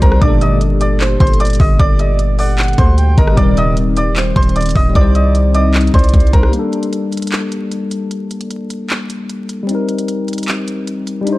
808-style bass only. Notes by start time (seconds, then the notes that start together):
0.02 C2
0.22 G1
1.20 G1
1.60 G1
1.79 G1
2.78 D2
3.18 G1
3.37 D#1
4.36 D#1
4.76 D#1
4.95 C2
5.94 C2
6.14 C2
6.33 C2